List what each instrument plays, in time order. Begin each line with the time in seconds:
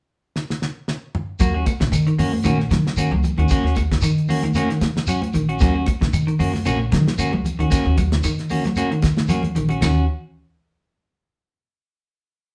0.36 snare
0.50 snare
0.62 snare
0.88 snare
1.15 mid tom
1.39 upright bass D#2, clean electric guitar F#3 A#3 F#4, muted clean electric guitar stroke, kick, closed hi-hat, shekere
1.54 clean electric guitar C#4 F#4
1.66 muted clean electric guitar stroke, kick, closed hi-hat, high conga, claves, shekere
1.80 upright bass A#1, clean electric guitar C#3, muted clean electric guitar stroke, kick, snare, high conga
1.92 upright bass D#3, muted clean electric guitar stroke, closed hi-hat, claves, shekere
2.07 clean electric guitar D#3, muted upright bass stroke, closed hi-hat
2.18 upright bass F#2, clean electric guitar A#3 C#4 F#4, open hi-hat, low conga, shekere
2.33 muted clean electric guitar stroke, high conga
2.44 upright bass A#1, clean electric guitar D#3 A#3 C#4 F#4, closed hi-hat, high conga, claves, shekere
2.60 muted clean electric guitar stroke, snare
2.70 upright bass D#3, clean electric guitar F#3, muted clean electric guitar stroke, snare, closed hi-hat, high conga, shekere
2.87 snare
2.97 upright bass D#3, clean electric guitar A#3 C#4 F#4, closed hi-hat, claves, shekere
3.11 upright bass C#2, clean electric guitar F#3, high conga
3.23 muted clean electric guitar stroke, closed hi-hat, low conga, shekere
3.37 upright bass D#2, clean electric guitar D#3 C#4 F#4, closed hi-hat, high conga, claves
3.48 clean electric guitar A#3 C#4 F#4, kick, closed hi-hat, shekere
3.63 upright bass D#2, clean electric guitar C#4 F#4, snare
3.75 muted clean electric guitar stroke, kick, closed hi-hat, high conga, claves, shekere
3.91 muted clean electric guitar stroke, kick, snare, closed hi-hat
4.01 upright bass D#3, clean electric guitar D#3, muted clean electric guitar stroke, closed hi-hat, claves, shekere
4.18 closed hi-hat
4.28 clean electric guitar A#3 C#4 F#4, open hi-hat, low conga, shekere
4.43 upright bass C#3, clean electric guitar D#3, muted clean electric guitar stroke, closed hi-hat, high conga
4.54 clean electric guitar A#3 C#4 F#4, closed hi-hat, high conga, claves, shekere
4.70 clean electric guitar D#3, muted clean electric guitar stroke, snare, closed hi-hat
4.81 upright bass D#3, muted clean electric guitar stroke, snare, closed hi-hat, high conga, shekere
4.96 snare, low conga
5.07 clean electric guitar F#3 C#4 F#4, muted clean electric guitar stroke, closed hi-hat, claves, shekere
5.22 muted clean electric guitar stroke, closed hi-hat, high conga
5.33 upright bass A#1, clean electric guitar D#3, muted clean electric guitar stroke, closed hi-hat, low conga, shekere
5.49 clean electric guitar C#4 F#4, closed hi-hat, claves
5.59 upright bass D#2, clean electric guitar F#3 A#3 C#4 F#4, kick, snare, closed hi-hat, shekere
5.75 clean electric guitar C#4 F#4
5.86 muted clean electric guitar stroke, kick, closed hi-hat, high conga, claves, shekere
6.01 upright bass A#1, clean electric guitar C#3, muted clean electric guitar stroke, kick, snare, high conga
6.13 upright bass D#3, muted clean electric guitar stroke, closed hi-hat, claves, shekere
6.27 clean electric guitar D#3, muted upright bass stroke, closed hi-hat
6.39 upright bass F#2, clean electric guitar A#3 C#4 F#4, open hi-hat, low conga, shekere
6.54 muted clean electric guitar stroke, snare, high conga
6.65 upright bass A#1, clean electric guitar C#3 A#3 C#4 F#4, closed hi-hat, high conga, claves, shekere
6.79 muted clean electric guitar stroke
6.92 upright bass D#3, clean electric guitar F#3, muted clean electric guitar stroke, snare, closed hi-hat, high conga, shekere
7.07 snare, low conga
7.18 upright bass D#3, clean electric guitar A#3 C#4 F#4, closed hi-hat, claves, shekere
7.33 upright bass C#2, clean electric guitar F#3, muted clean electric guitar stroke, high conga
7.45 muted clean electric guitar stroke, closed hi-hat, low conga, shekere
7.59 upright bass D#2, clean electric guitar D#3 C#4 F#4, closed hi-hat, claves
7.71 clean electric guitar A#3 C#4 F#4, kick, snare, closed hi-hat, shekere
7.85 upright bass D#2, clean electric guitar C#4 F#4
7.97 clean electric guitar F#3, muted clean electric guitar stroke, kick, closed hi-hat, high conga, claves, shekere
8.12 muted clean electric guitar stroke, snare, closed hi-hat, high conga
8.23 upright bass D#3, clean electric guitar D#3, muted clean electric guitar stroke, closed hi-hat, claves, shekere
8.39 snare, closed hi-hat
8.49 clean electric guitar A#3 C#4 F#4, open hi-hat, low conga, shekere
8.64 upright bass C#3, clean electric guitar F#3, muted clean electric guitar stroke, snare, closed hi-hat, high conga
8.76 clean electric guitar A#3 C#4 F#4, closed hi-hat, high conga, claves, shekere
8.91 clean electric guitar D#3, muted clean electric guitar stroke, closed hi-hat
9.02 upright bass D#3, muted clean electric guitar stroke, kick, snare, closed hi-hat, high conga, shekere
9.17 snare, high conga
9.28 clean electric guitar F#3 A#3 C#4 F#4, closed hi-hat, low conga, claves, shekere
9.43 muted clean electric guitar stroke, closed hi-hat, low conga
9.55 upright bass A#1, clean electric guitar D#3, muted clean electric guitar stroke, closed hi-hat, low conga, shekere
9.69 clean electric guitar C#4 F#4, closed hi-hat, low conga, claves
9.81 upright bass D#2, clean electric guitar D#3 C#4 F#4, muted clean electric guitar stroke, snare, floor tom, ride bell, low conga, claves, shekere